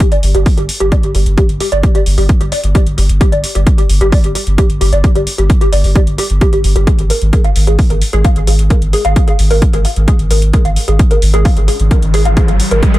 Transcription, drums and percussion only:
0.00 kick, closed hi-hat
0.12 closed hi-hat
0.23 open hi-hat
0.35 closed hi-hat
0.46 kick, open hi-hat
0.58 closed hi-hat
0.69 open hi-hat
0.80 closed hi-hat
0.92 kick, closed hi-hat
1.03 closed hi-hat
1.15 open hi-hat
1.26 closed hi-hat
1.38 kick, closed hi-hat
1.49 closed hi-hat
1.60 open hi-hat
1.72 closed hi-hat
1.83 kick, closed hi-hat
1.95 closed hi-hat
2.06 open hi-hat
2.18 open hi-hat
2.29 kick, closed hi-hat
2.41 closed hi-hat
2.52 open hi-hat
2.64 closed hi-hat
2.75 kick, closed hi-hat
2.87 closed hi-hat
2.98 open hi-hat
3.09 closed hi-hat
3.21 kick, closed hi-hat
3.32 closed hi-hat
3.44 open hi-hat
3.55 closed hi-hat
3.67 kick, closed hi-hat
3.78 closed hi-hat
3.90 open hi-hat
4.01 closed hi-hat
4.12 kick, open hi-hat
4.24 closed hi-hat
4.35 open hi-hat
4.47 closed hi-hat
4.58 kick, closed hi-hat
4.70 closed hi-hat
4.81 open hi-hat
4.93 closed hi-hat
5.04 kick, closed hi-hat
5.15 closed hi-hat
5.27 open hi-hat
5.38 closed hi-hat
5.50 kick, closed hi-hat
5.61 closed hi-hat
5.73 open hi-hat
5.84 open hi-hat
5.96 kick, closed hi-hat
6.07 closed hi-hat
6.18 open hi-hat
6.30 closed hi-hat
6.41 kick, closed hi-hat
6.53 closed hi-hat
6.64 open hi-hat
6.76 closed hi-hat
6.87 kick, closed hi-hat
6.99 closed hi-hat
7.10 open hi-hat
7.22 closed hi-hat
7.33 kick, closed hi-hat
7.44 closed hi-hat
7.56 open hi-hat
7.67 closed hi-hat
7.79 kick, open hi-hat
7.90 closed hi-hat
8.02 open hi-hat
8.13 closed hi-hat
8.24 kick, closed hi-hat
8.36 closed hi-hat
8.47 open hi-hat
8.59 closed hi-hat
8.70 kick, closed hi-hat
8.82 closed hi-hat
8.93 open hi-hat
9.05 closed hi-hat
9.16 kick, closed hi-hat
9.28 closed hi-hat
9.39 open hi-hat
9.51 open hi-hat
9.62 kick, closed hi-hat
9.73 closed hi-hat
9.85 open hi-hat
9.96 closed hi-hat
10.08 kick, closed hi-hat
10.19 closed hi-hat
10.31 open hi-hat
10.42 closed hi-hat
10.53 kick, closed hi-hat
10.65 closed hi-hat
10.76 open hi-hat
10.88 closed hi-hat
10.99 kick, closed hi-hat
11.11 closed hi-hat
11.22 open hi-hat
11.34 closed hi-hat
11.45 kick, open hi-hat
11.57 closed hi-hat
11.68 open hi-hat
11.80 closed hi-hat
11.91 kick, closed hi-hat
12.02 closed hi-hat
12.14 open hi-hat
12.25 closed hi-hat
12.37 kick, closed hi-hat
12.48 closed hi-hat
12.60 open hi-hat
12.71 closed hi-hat
12.83 kick, closed hi-hat
12.94 closed hi-hat

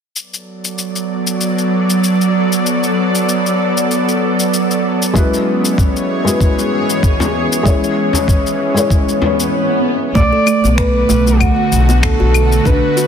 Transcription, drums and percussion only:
0.16 shaker
0.34 shaker
0.65 shaker
0.78 shaker
0.96 shaker
1.27 shaker
1.41 shaker
1.58 shaker
1.90 shaker
2.04 shaker
2.21 shaker
2.52 shaker
2.66 shaker
2.84 shaker
3.15 shaker
3.29 shaker
3.46 shaker
3.77 shaker
3.91 shaker
4.09 shaker
4.40 shaker
4.54 shaker
4.71 shaker
5.02 shaker
5.16 kick, shaker
5.34 shaker
5.65 shaker
5.78 kick, shaker
5.96 shaker
6.28 shaker
6.41 kick, shaker
6.59 shaker
6.90 shaker
7.03 kick, shaker
7.20 frame drum, shaker
7.53 shaker
7.66 kick, shaker
7.84 shaker
8.13 frame drum, shaker
8.28 kick, shaker
8.47 shaker
8.77 shaker
8.90 kick, shaker
9.09 shaker
9.22 frame drum
9.40 shaker
10.15 kick, shaker
10.47 claves, shaker
10.65 shaker
10.78 finger snap, kick, shaker
11.10 shaker
11.27 shaker
11.40 kick, claves, shaker
11.72 shaker
11.90 shaker
12.03 finger snap, kick, shaker
12.34 claves, shaker
12.52 shaker
12.66 kick, shaker
12.97 shaker

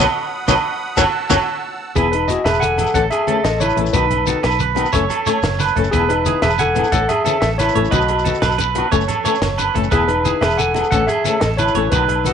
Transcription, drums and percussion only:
0.48 kick, snare, high conga, low agogo, shekere
0.97 kick, snare, high conga, low agogo, shekere
1.30 kick, snare, high conga, low agogo, shekere
1.96 kick, closed hi-hat, high conga, low agogo, shekere
2.13 closed hi-hat, low agogo
2.28 closed hi-hat, high conga, shekere
2.46 snare, closed hi-hat, low conga, low agogo
2.54 shekere
2.62 closed hi-hat, high conga, shekere
2.78 closed hi-hat, low conga, low agogo, shekere
2.87 shekere
2.94 kick, closed hi-hat, high conga, shekere
3.03 low conga
3.11 closed hi-hat, low conga, low agogo, shekere
3.27 closed hi-hat, high conga, low agogo
3.44 snare, closed hi-hat, low conga, shekere
3.60 closed hi-hat, high conga, low agogo, shekere
3.69 low conga, shekere
3.77 closed hi-hat, low conga
3.86 shekere
3.93 kick, closed hi-hat, high conga, low agogo, shekere
4.11 closed hi-hat, low conga, low agogo
4.26 closed hi-hat, high conga, shekere
4.43 snare, closed hi-hat, low conga, low agogo
4.51 low conga, shekere
4.59 closed hi-hat, high conga, shekere
4.76 closed hi-hat, low conga, low agogo, shekere
4.85 shekere
4.93 kick, closed hi-hat, high conga, shekere
5.02 low conga
5.10 closed hi-hat, low conga, low agogo, shekere
5.26 closed hi-hat, high conga, low agogo, shekere
5.42 snare, closed hi-hat, low conga, shekere
5.59 snare, closed hi-hat, high conga, low agogo, shekere
5.68 low conga, shekere
5.76 kick, closed hi-hat, low conga
5.84 shekere
5.93 kick, closed hi-hat, high conga, low agogo, shekere
6.09 closed hi-hat, low conga, low agogo
6.25 closed hi-hat, high conga, shekere
6.42 snare, closed hi-hat, low conga, low agogo
6.50 low conga, shekere
6.58 closed hi-hat, high conga, shekere
6.75 closed hi-hat, low conga, low agogo, shekere
6.84 shekere
6.92 kick, closed hi-hat, high conga, shekere
7.02 low conga
7.09 closed hi-hat, low conga, low agogo, shekere
7.26 closed hi-hat, high conga, low agogo, shekere
7.42 snare, closed hi-hat, low conga, shekere
7.59 snare, closed hi-hat, high conga, low agogo, shekere
7.69 low conga, shekere
7.75 closed hi-hat, low conga
7.85 shekere
7.92 kick, closed hi-hat, high conga, low agogo, shekere
8.01 low conga, shekere
8.08 closed hi-hat, low conga, low agogo
8.19 shekere
8.25 closed hi-hat, high conga, shekere
8.34 shekere
8.42 snare, closed hi-hat, low conga, low agogo, shekere
8.51 shekere
8.59 closed hi-hat, high conga, shekere
8.75 closed hi-hat, low conga, low agogo
8.92 kick, closed hi-hat, high conga, shekere
9.01 shekere
9.09 closed hi-hat, low conga, low agogo, shekere
9.17 low conga
9.25 closed hi-hat, high conga, low conga, low agogo, shekere
9.34 low conga, shekere
9.42 snare, closed hi-hat, low conga, shekere
9.58 closed hi-hat, high conga, low agogo, shekere
9.68 low conga
9.75 kick, closed hi-hat, low conga
9.84 shekere
9.91 kick, closed hi-hat, high conga, low agogo, shekere
10.08 closed hi-hat, low conga, low agogo
10.25 closed hi-hat, high conga, shekere
10.41 snare, closed hi-hat, low conga, low agogo
10.50 low conga, shekere
10.59 closed hi-hat, high conga, shekere
10.74 closed hi-hat, low conga, low agogo, shekere
10.84 shekere
10.92 kick, closed hi-hat, high conga, shekere
11.00 low conga
11.08 closed hi-hat, low conga, low agogo, shekere
11.24 closed hi-hat, high conga, low agogo, shekere
11.41 snare, closed hi-hat, low conga, shekere
11.58 closed hi-hat, high conga, low agogo, shekere
11.67 low conga, shekere
11.74 closed hi-hat, low conga
11.92 kick, closed hi-hat, high conga, low agogo, shekere
12.08 closed hi-hat, low conga, low agogo
12.25 closed hi-hat, high conga, shekere

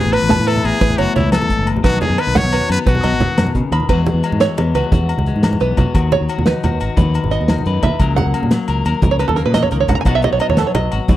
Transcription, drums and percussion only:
0.13 closed hi-hat, low agogo
0.29 snare, closed hi-hat, high conga, low conga
0.47 closed hi-hat, low conga, low agogo
0.56 low conga
0.64 closed hi-hat, low agogo
0.81 kick, closed hi-hat, high conga
0.90 low conga
0.98 closed hi-hat, low agogo
1.16 snare, closed hi-hat, low conga
1.32 snare, closed hi-hat, high conga, low agogo
1.42 low conga
1.50 kick, closed hi-hat
1.67 closed hi-hat, low agogo
1.77 low conga
1.84 kick, closed hi-hat, high conga, low agogo
2.01 closed hi-hat, low conga
2.10 low conga
2.18 closed hi-hat, low conga, low agogo
2.35 snare, closed hi-hat, high conga, low conga
2.44 low conga
2.52 closed hi-hat, low conga, low agogo
2.61 low conga
2.69 closed hi-hat, low conga, low agogo
2.86 kick, closed hi-hat, high conga
2.95 low conga
3.03 closed hi-hat, low agogo
3.12 low conga
3.20 closed hi-hat, low conga
3.38 snare, closed hi-hat, high conga, low agogo
3.47 low conga
3.55 kick, closed hi-hat, low conga
3.72 closed hi-hat, low conga, low agogo
3.80 low conga
3.89 kick, crash, high conga, low conga, low agogo
4.06 closed hi-hat, low conga
4.23 closed hi-hat, low agogo
4.32 low conga
4.40 snare, closed hi-hat, high conga
4.57 closed hi-hat, low conga, low agogo
4.67 low conga
4.75 closed hi-hat, low agogo
4.84 low conga
4.92 kick, closed hi-hat, high conga, low conga
5.01 low conga
5.09 closed hi-hat, low agogo
5.18 low conga
5.26 closed hi-hat, low conga
5.36 low conga
5.43 snare, closed hi-hat, high conga, low conga, low agogo
5.53 low conga
5.60 closed hi-hat, low conga
5.77 kick, closed hi-hat, low conga, low agogo
5.94 kick, closed hi-hat, high conga, low conga, low agogo
6.12 closed hi-hat, low conga
6.29 closed hi-hat, low agogo
6.39 low conga
6.46 snare, closed hi-hat, high conga
6.63 closed hi-hat, low conga, low agogo
6.72 low conga
6.80 snare, closed hi-hat, low agogo
6.90 low conga
6.97 kick, closed hi-hat, high conga, low conga
7.07 low conga
7.14 closed hi-hat, low agogo
7.24 low conga
7.31 closed hi-hat, low conga
7.41 low conga
7.48 snare, closed hi-hat, high conga, low conga, low agogo
7.58 low conga
7.66 closed hi-hat, low conga
7.82 kick, closed hi-hat, low conga, low agogo
8.00 kick, closed hi-hat, high conga, low conga, low agogo
8.17 closed hi-hat, low conga
8.34 closed hi-hat, low agogo
8.43 low conga
8.51 snare, closed hi-hat, high conga
8.68 closed hi-hat, low agogo
8.77 low conga
8.85 snare, closed hi-hat, low agogo
8.95 low conga
9.02 kick, closed hi-hat, high conga, low conga
9.12 low conga
9.19 closed hi-hat, low agogo
9.29 low conga
9.37 closed hi-hat
9.46 low conga
9.54 snare, closed hi-hat, high conga, low conga, low agogo
9.64 low conga
9.71 closed hi-hat, low conga
9.88 kick, closed hi-hat, low conga, low agogo
10.05 kick, closed hi-hat, high conga, low agogo
10.22 closed hi-hat, low conga
10.39 closed hi-hat, low agogo
10.50 low conga
10.57 snare, closed hi-hat, high conga, low conga
10.75 closed hi-hat, low conga, low agogo
10.83 low conga
10.92 snare, closed hi-hat, low agogo
11.08 kick, closed hi-hat, high conga, low conga

